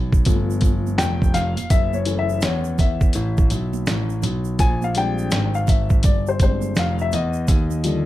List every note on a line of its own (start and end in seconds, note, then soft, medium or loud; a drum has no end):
0.00 0.22 B1 medium
0.12 kick medium
0.12 shaker medium
0.25 0.95 G1 loud
0.25 1.31 F3 medium
0.25 1.31 A3 soft
0.25 1.31 B3 medium
0.25 kick medium
0.25 closed hi-hat medium
0.25 high conga soft
0.25 low conga medium
0.25 shaker medium
0.50 shaker soft
0.61 kick medium
0.61 closed hi-hat medium
0.61 high conga soft
0.61 shaker soft
0.87 high conga medium
0.87 shaker soft
0.98 1.54 F1 medium
0.98 1.35 G5 loud
0.98 snare loud
0.98 closed hi-hat medium
0.98 shaker medium
1.22 kick medium
1.22 shaker soft
1.34 1.68 F5 loud
1.34 snare soft
1.34 closed hi-hat medium
1.34 low conga medium
1.34 shaker soft
1.57 1.62 F1 soft
1.57 closed hi-hat medium
1.57 high conga medium
1.57 shaker medium
1.70 2.43 F#1 loud
1.70 1.95 E5 loud
1.70 kick loud
1.70 closed hi-hat medium
1.70 shaker medium
1.93 2.17 C#5 medium
1.93 high conga medium
1.93 shaker soft
2.05 3.10 E3 medium
2.05 3.11 A3 soft
2.05 3.11 C#4 medium
2.05 closed hi-hat medium
2.05 shaker soft
2.19 2.43 E5 loud
2.29 shaker soft
2.41 3.11 E2 medium
2.41 2.80 C#5 medium
2.41 snare loud
2.41 closed hi-hat loud
2.41 shaker medium
2.64 shaker soft
2.78 3.84 E5 medium
2.78 kick medium
2.78 closed hi-hat medium
2.78 low conga medium
2.78 shaker medium
3.01 kick medium
3.01 shaker medium
3.13 3.49 A1 loud
3.13 closed hi-hat medium
3.13 shaker medium
3.37 kick medium
3.37 shaker soft
3.50 3.85 B1 medium
3.50 closed hi-hat medium
3.50 shaker soft
3.73 high conga medium
3.73 shaker soft
3.86 4.21 A1 loud
3.86 snare loud
3.86 closed hi-hat medium
3.86 shaker medium
4.10 shaker soft
4.22 4.57 B1 medium
4.22 closed hi-hat medium
4.22 low conga medium
4.22 shaker soft
4.45 shaker soft
4.59 5.28 A#1 loud
4.59 4.83 G#5 loud
4.59 kick loud
4.59 closed hi-hat medium
4.59 shaker medium
4.82 4.97 F5 medium
4.82 high conga medium
4.82 shaker soft
4.95 5.47 G3 medium
4.95 5.48 G#3 soft
4.95 5.48 C4 medium
4.95 5.48 D4 medium
4.95 5.51 G5 loud
4.95 closed hi-hat medium
4.95 shaker soft
5.18 shaker soft
5.31 6.00 G#1 medium
5.31 snare loud
5.31 closed hi-hat loud
5.31 shaker medium
5.54 5.69 F5 medium
5.54 shaker soft
5.67 6.06 E5 medium
5.67 kick medium
5.67 closed hi-hat medium
5.67 low conga medium
5.67 shaker medium
5.90 kick medium
5.90 shaker soft
6.03 6.73 G1 medium
6.03 6.28 D5 medium
6.03 kick loud
6.03 closed hi-hat medium
6.03 shaker medium
6.27 6.41 C5 medium
6.27 shaker medium
6.39 6.73 G3 soft
6.39 6.73 G#3 soft
6.39 6.73 C4 soft
6.39 6.73 D4 medium
6.39 6.79 C5 medium
6.39 kick medium
6.39 closed hi-hat medium
6.39 shaker soft
6.62 high conga medium
6.62 shaker soft
6.75 7.11 F1 medium
6.75 7.01 F5 loud
6.75 snare loud
6.75 closed hi-hat medium
6.75 shaker medium
6.99 7.13 E5 loud
6.99 shaker soft
7.12 7.47 E2 loud
7.12 8.06 D#5 medium
7.12 closed hi-hat medium
7.12 low conga medium
7.12 shaker soft
7.33 shaker medium
7.48 8.06 D#2 loud
7.48 kick loud
7.48 closed hi-hat medium
7.48 shaker medium
7.71 high conga medium
7.71 shaker soft
7.84 8.06 D3 medium
7.84 8.06 F3 medium
7.84 8.06 G3 medium
7.84 closed hi-hat medium
7.84 shaker soft